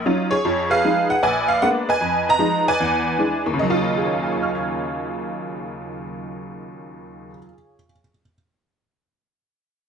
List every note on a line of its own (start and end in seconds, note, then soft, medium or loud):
0.06 0.32 F#3 soft
0.06 0.32 C#4 soft
0.06 0.32 D#4 soft
0.06 0.32 F4 medium
0.31 0.69 G#4 medium
0.31 0.71 C#5 medium
0.45 0.78 F2 medium
0.45 0.78 F3 medium
0.70 1.19 G#4 medium
0.70 1.18 B4 medium
0.70 1.06 F5 loud
0.84 1.11 F3 soft
0.84 1.11 G#3 soft
0.84 1.11 D#4 medium
1.10 1.22 F#5 medium
1.23 1.56 A#1 medium
1.23 1.87 B4 medium
1.23 1.96 D5 medium
1.23 1.49 G#5 medium
1.48 1.60 F5 medium
1.62 1.89 G#3 soft
1.62 1.89 A#3 soft
1.62 1.89 B3 soft
1.62 1.89 D4 medium
1.62 1.68 F#5 medium
1.89 2.62 B4 medium
1.89 2.28 D#5 medium
1.89 2.28 G#5 medium
2.01 2.34 F2 medium
2.29 2.76 D#5 medium
2.29 2.64 A#5 loud
2.39 2.66 F3 medium
2.39 2.66 G#3 soft
2.39 2.67 D#4 medium
2.68 3.41 B4 medium
2.68 3.41 D5 medium
2.68 3.41 G#5 loud
2.80 3.13 E2 medium
3.18 3.45 E3 soft
3.18 3.45 G#3 soft
3.18 3.45 D4 medium
3.46 7.29 D#2 medium
3.54 7.36 C#3 medium
3.59 7.45 F#3 medium
3.59 7.38 D#5 medium
3.70 7.53 F4 medium
3.97 7.76 G#4 soft
4.05 7.84 C#5 soft
4.13 7.92 F5 soft
4.22 8.01 G#5 soft
4.32 8.10 C#6 soft
4.43 8.21 F6 soft
4.55 8.33 G#6 soft